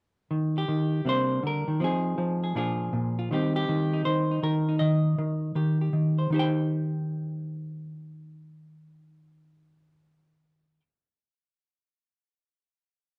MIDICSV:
0, 0, Header, 1, 2, 480
1, 0, Start_track
1, 0, Key_signature, -3, "major"
1, 0, Tempo, 374065
1, 394, Time_signature, 4, 2, 24, 8
1, 16916, End_track
2, 0, Start_track
2, 0, Title_t, "Hollow-body jazz guitar"
2, 0, Program_c, 0, 26
2, 393, Note_on_c, 0, 51, 65
2, 743, Note_on_c, 0, 67, 73
2, 861, Note_off_c, 0, 51, 0
2, 877, Note_on_c, 0, 51, 69
2, 1336, Note_off_c, 0, 51, 0
2, 1346, Note_on_c, 0, 48, 64
2, 1360, Note_on_c, 0, 55, 45
2, 1365, Note_on_c, 0, 58, 38
2, 1370, Note_off_c, 0, 67, 0
2, 1374, Note_on_c, 0, 62, 46
2, 1398, Note_on_c, 0, 72, 95
2, 1830, Note_off_c, 0, 48, 0
2, 1837, Note_on_c, 0, 50, 56
2, 1856, Note_off_c, 0, 72, 0
2, 1884, Note_on_c, 0, 70, 74
2, 2148, Note_off_c, 0, 50, 0
2, 2153, Note_on_c, 0, 51, 61
2, 2298, Note_off_c, 0, 55, 0
2, 2310, Note_on_c, 0, 53, 68
2, 2315, Note_off_c, 0, 51, 0
2, 2317, Note_off_c, 0, 58, 0
2, 2322, Note_on_c, 0, 60, 43
2, 2325, Note_off_c, 0, 62, 0
2, 2332, Note_on_c, 0, 63, 47
2, 2340, Note_off_c, 0, 70, 0
2, 2363, Note_on_c, 0, 68, 79
2, 2780, Note_off_c, 0, 53, 0
2, 2795, Note_on_c, 0, 53, 75
2, 3110, Note_off_c, 0, 68, 0
2, 3125, Note_on_c, 0, 68, 42
2, 3260, Note_off_c, 0, 60, 0
2, 3263, Note_off_c, 0, 68, 0
2, 3266, Note_off_c, 0, 63, 0
2, 3271, Note_off_c, 0, 53, 0
2, 3275, Note_on_c, 0, 46, 65
2, 3286, Note_on_c, 0, 53, 53
2, 3290, Note_on_c, 0, 62, 53
2, 3298, Note_on_c, 0, 65, 54
2, 3312, Note_on_c, 0, 68, 60
2, 3742, Note_off_c, 0, 46, 0
2, 3758, Note_on_c, 0, 46, 70
2, 4075, Note_off_c, 0, 65, 0
2, 4091, Note_on_c, 0, 65, 54
2, 4219, Note_off_c, 0, 46, 0
2, 4225, Note_off_c, 0, 62, 0
2, 4226, Note_off_c, 0, 65, 0
2, 4237, Note_off_c, 0, 68, 0
2, 4244, Note_off_c, 0, 53, 0
2, 4246, Note_on_c, 0, 51, 66
2, 4264, Note_on_c, 0, 55, 47
2, 4267, Note_on_c, 0, 60, 49
2, 4276, Note_on_c, 0, 63, 51
2, 4286, Note_on_c, 0, 67, 50
2, 4563, Note_off_c, 0, 67, 0
2, 4568, Note_on_c, 0, 67, 78
2, 4728, Note_off_c, 0, 51, 0
2, 4733, Note_on_c, 0, 51, 73
2, 5044, Note_off_c, 0, 63, 0
2, 5049, Note_on_c, 0, 63, 46
2, 5195, Note_off_c, 0, 67, 0
2, 5200, Note_on_c, 0, 72, 88
2, 5209, Note_off_c, 0, 51, 0
2, 5214, Note_on_c, 0, 51, 65
2, 5531, Note_off_c, 0, 63, 0
2, 5536, Note_on_c, 0, 63, 45
2, 5679, Note_off_c, 0, 51, 0
2, 5681, Note_off_c, 0, 72, 0
2, 5684, Note_on_c, 0, 51, 68
2, 5692, Note_on_c, 0, 70, 80
2, 6009, Note_off_c, 0, 63, 0
2, 6014, Note_on_c, 0, 63, 41
2, 6145, Note_off_c, 0, 70, 0
2, 6150, Note_on_c, 0, 75, 87
2, 6171, Note_off_c, 0, 51, 0
2, 6171, Note_on_c, 0, 51, 65
2, 6637, Note_off_c, 0, 51, 0
2, 6653, Note_on_c, 0, 51, 74
2, 7111, Note_off_c, 0, 51, 0
2, 7127, Note_on_c, 0, 51, 67
2, 7130, Note_off_c, 0, 63, 0
2, 7135, Note_on_c, 0, 67, 44
2, 7444, Note_off_c, 0, 67, 0
2, 7460, Note_on_c, 0, 67, 41
2, 7594, Note_off_c, 0, 51, 0
2, 7610, Note_on_c, 0, 51, 64
2, 7918, Note_off_c, 0, 75, 0
2, 7936, Note_on_c, 0, 72, 43
2, 8069, Note_off_c, 0, 51, 0
2, 8073, Note_off_c, 0, 72, 0
2, 8075, Note_off_c, 0, 67, 0
2, 8087, Note_on_c, 0, 51, 62
2, 8111, Note_off_c, 0, 55, 0
2, 8116, Note_on_c, 0, 63, 63
2, 8133, Note_off_c, 0, 60, 0
2, 8138, Note_on_c, 0, 67, 60
2, 8161, Note_on_c, 0, 72, 56
2, 8204, Note_on_c, 0, 79, 83
2, 13850, Note_off_c, 0, 51, 0
2, 13857, Note_off_c, 0, 79, 0
2, 13864, Note_off_c, 0, 63, 0
2, 13875, Note_off_c, 0, 67, 0
2, 13887, Note_off_c, 0, 72, 0
2, 16916, End_track
0, 0, End_of_file